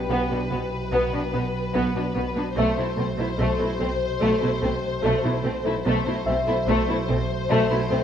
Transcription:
0.00 2.52 B1 medium
0.00 1.71 G4 soft
0.00 2.52 B4 soft
0.00 1.71 G5 soft
0.09 0.17 B1 soft
0.09 0.17 B2 soft
0.09 0.29 B3 soft
0.30 0.39 B2 soft
0.30 0.38 B3 soft
0.30 0.41 D4 soft
0.50 0.58 B1 soft
0.50 0.59 B2 soft
0.50 0.59 B3 soft
0.50 0.60 B3 soft
0.92 1.00 B1 soft
0.92 1.00 B2 soft
0.92 1.11 B3 soft
0.92 1.12 B3 soft
1.12 1.21 B2 soft
1.12 1.20 B3 soft
1.12 1.21 D4 soft
1.33 1.41 B1 soft
1.33 1.41 B2 soft
1.33 1.41 B3 soft
1.33 1.42 B3 soft
1.74 1.82 B1 soft
1.74 1.83 B2 soft
1.74 1.93 B3 soft
1.94 2.04 B2 soft
1.94 2.02 B3 soft
1.94 2.03 D4 soft
2.15 2.23 B1 soft
2.15 2.24 B2 soft
2.15 2.23 B3 soft
2.15 2.24 B3 soft
2.35 2.43 B2 soft
2.35 2.43 B3 soft
2.35 2.45 D4 soft
2.55 2.64 B1 soft
2.55 5.82 B1 medium
2.55 2.64 B2 soft
2.55 2.75 A3 soft
2.55 2.76 A3 soft
2.55 5.84 C5 soft
2.76 2.85 B2 soft
2.76 2.84 A3 soft
2.76 2.86 E4 soft
2.96 3.05 B1 soft
2.96 3.06 B2 soft
2.96 3.04 A3 soft
2.96 3.07 C4 soft
3.17 3.26 B2 soft
3.17 3.25 A3 soft
3.17 3.28 E4 soft
3.38 3.46 B1 soft
3.38 3.47 B2 soft
3.38 3.57 A3 soft
3.38 3.59 A3 soft
3.58 3.67 B2 soft
3.58 3.66 A3 soft
3.58 3.69 E4 soft
3.79 3.88 B1 soft
3.79 3.88 B2 soft
3.79 3.87 A3 soft
3.79 3.89 C4 soft
4.20 4.28 B1 soft
4.20 4.29 B2 soft
4.20 4.39 A3 soft
4.20 4.40 A3 soft
4.41 4.50 B2 soft
4.41 4.49 A3 soft
4.41 4.50 E4 soft
4.61 4.70 B1 soft
4.61 4.70 B2 soft
4.61 4.69 A3 soft
4.61 4.72 C4 soft
5.02 5.11 B1 soft
5.02 5.12 B2 soft
5.02 5.22 A3 soft
5.02 5.23 A3 soft
5.23 5.32 B2 soft
5.23 5.31 A3 soft
5.23 5.33 E4 soft
5.44 5.53 B1 soft
5.44 5.52 B2 soft
5.44 5.52 A3 soft
5.44 5.53 C4 soft
5.65 5.73 B2 soft
5.65 5.73 A3 soft
5.65 5.74 E4 soft
5.85 8.04 B1 medium
5.85 5.93 B1 soft
5.85 5.93 B2 medium
5.85 6.04 A3 soft
5.85 6.05 A3 soft
5.85 8.04 C5 soft
6.06 6.14 B2 soft
6.06 6.14 A3 soft
6.06 6.14 E4 soft
6.26 6.34 B1 soft
6.26 6.34 B2 soft
6.26 6.35 A3 soft
6.26 6.34 C4 soft
6.26 8.04 E5 soft
6.47 6.55 B2 soft
6.47 6.55 A3 soft
6.47 6.55 E4 soft
6.67 6.75 B1 medium
6.67 6.75 B2 medium
6.67 6.86 A3 medium
6.67 6.87 A3 soft
6.87 6.96 B2 soft
6.87 6.95 A3 soft
6.87 6.96 E4 soft
7.08 7.16 B1 soft
7.08 7.17 B2 soft
7.08 7.16 A3 soft
7.08 7.17 C4 soft
7.49 7.58 B1 medium
7.49 7.58 B2 medium
7.49 7.68 A3 soft
7.49 7.69 A3 medium
7.69 7.79 B2 soft
7.69 7.77 A3 soft
7.69 7.79 E4 soft
7.90 7.99 B1 soft
7.90 7.99 B2 soft
7.90 7.98 A3 soft
7.90 8.00 C4 soft

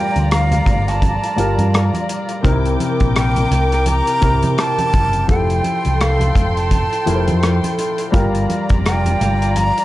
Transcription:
0.00 1.36 G3 medium
0.00 2.46 A3 medium
0.00 1.37 F4 medium
0.00 2.40 F4 medium
0.00 0.51 G4 medium
0.00 0.52 A#4 medium
0.00 2.46 B4 medium
0.00 2.46 C5 medium
0.00 2.40 D5 medium
0.00 0.32 G5 medium
0.00 2.40 A#5 medium
0.16 0.60 D2 medium
0.16 closed hi-hat soft
0.16 high conga medium
0.31 0.90 F5 medium
0.31 cross-stick medium
0.31 closed hi-hat medium
0.51 closed hi-hat soft
0.51 high conga medium
0.51 low conga medium
0.66 1.16 G1 medium
0.66 kick medium
0.66 closed hi-hat medium
0.66 low conga medium
0.88 1.95 A5 medium
0.88 cross-stick soft
0.88 closed hi-hat soft
1.02 kick medium
1.02 closed hi-hat medium
1.02 muted conga soft
1.02 high conga soft
1.24 closed hi-hat soft
1.36 1.56 G1 medium
1.36 2.04 G3 medium
1.36 2.04 F4 medium
1.36 2.05 G4 medium
1.36 2.06 A#4 medium
1.36 closed hi-hat medium
1.36 muted conga soft
1.58 1.89 G2 medium
1.58 closed hi-hat soft
1.58 high conga medium
1.74 cross-stick medium
1.74 closed hi-hat medium
1.93 closed hi-hat soft
1.93 high conga medium
2.09 closed hi-hat medium
2.29 closed hi-hat soft
2.43 2.76 C2 medium
2.43 3.35 C3 medium
2.43 3.35 C4 medium
2.43 2.52 D#4 medium
2.43 5.25 A#4 medium
2.43 3.36 A#4 medium
2.43 5.25 G5 medium
2.43 5.25 D6 medium
2.43 kick loud
2.43 closed hi-hat medium
2.51 3.39 E4 medium
2.65 closed hi-hat soft
2.80 closed hi-hat medium
2.80 high conga medium
3.00 3.45 A#1 medium
3.00 kick medium
3.00 closed hi-hat soft
3.00 high conga medium
3.16 3.90 G5 medium
3.16 cross-stick medium
3.16 closed hi-hat medium
3.36 closed hi-hat soft
3.36 high conga medium
3.36 low conga medium
3.51 4.00 C2 medium
3.51 closed hi-hat medium
3.51 muted conga soft
3.51 low conga medium
3.72 cross-stick soft
3.72 closed hi-hat soft
3.86 4.61 A#5 loud
3.86 closed hi-hat medium
3.86 muted conga soft
3.86 high conga soft
4.07 closed hi-hat soft
4.21 4.41 C2 medium
4.21 4.89 C3 medium
4.21 4.89 C4 medium
4.21 4.89 E4 medium
4.21 4.90 A#4 medium
4.21 kick medium
4.21 closed hi-hat medium
4.21 muted conga soft
4.43 4.56 C3 medium
4.43 closed hi-hat soft
4.43 high conga medium
4.58 5.30 A5 loud
4.58 cross-stick loud
4.58 closed hi-hat medium
4.78 closed hi-hat soft
4.78 high conga medium
4.93 5.25 F#1 medium
4.93 kick medium
4.93 closed hi-hat medium
4.93 muted conga soft
5.13 closed hi-hat soft
5.28 5.60 F1 medium
5.28 6.19 F3 medium
5.28 6.20 E4 medium
5.28 6.20 G4 medium
5.28 8.10 A4 medium
5.28 6.21 A4 medium
5.28 8.10 G5 medium
5.28 6.03 G5 medium
5.28 8.10 C6 medium
5.28 kick loud
5.28 closed hi-hat medium
5.28 muted conga soft
5.50 closed hi-hat soft
5.64 closed hi-hat medium
5.64 muted conga soft
5.64 high conga medium
5.85 6.30 C2 medium
5.85 closed hi-hat soft
5.85 high conga medium
6.00 6.56 F5 medium
6.00 cross-stick medium
6.00 closed hi-hat medium
6.00 muted conga soft
6.20 closed hi-hat soft
6.20 high conga medium
6.20 low conga medium
6.35 6.85 F1 medium
6.35 kick medium
6.35 closed hi-hat medium
6.35 muted conga soft
6.35 low conga medium
6.57 7.59 A5 medium
6.57 closed hi-hat soft
6.71 kick medium
6.71 closed hi-hat medium
6.71 muted conga soft
6.71 high conga soft
6.93 closed hi-hat soft
7.06 7.29 F1 medium
7.06 7.73 F3 medium
7.06 7.74 E4 medium
7.06 7.74 G4 medium
7.06 7.15 A#4 medium
7.06 closed hi-hat medium
7.06 muted conga soft
7.15 7.78 C5 medium
7.28 7.59 F2 medium
7.28 closed hi-hat soft
7.28 high conga medium
7.43 cross-stick medium
7.43 closed hi-hat medium
7.43 muted conga soft
7.63 closed hi-hat soft
7.63 high conga medium
7.78 closed hi-hat medium
7.78 muted conga soft
7.98 closed hi-hat medium
8.12 8.45 G1 medium
8.12 9.04 G3 medium
8.12 9.05 F4 medium
8.12 9.85 F4 medium
8.12 9.05 G4 medium
8.12 9.06 A#4 medium
8.12 9.85 D5 medium
8.12 9.85 A#5 medium
8.12 kick loud
8.12 closed hi-hat medium
8.35 closed hi-hat soft
8.49 closed hi-hat medium
8.49 high conga medium
8.69 9.14 F1 medium
8.69 kick medium
8.69 closed hi-hat soft
8.69 high conga medium
8.85 9.59 G5 medium
8.85 cross-stick medium
8.85 closed hi-hat medium
8.85 muted conga soft
9.05 closed hi-hat medium
9.05 high conga medium
9.05 low conga medium
9.21 9.70 G1 medium
9.21 closed hi-hat medium
9.21 muted conga soft
9.21 low conga medium
9.42 closed hi-hat soft
9.56 9.85 A#5 loud
9.56 closed hi-hat medium
9.56 muted conga soft
9.56 high conga soft
9.78 closed hi-hat soft

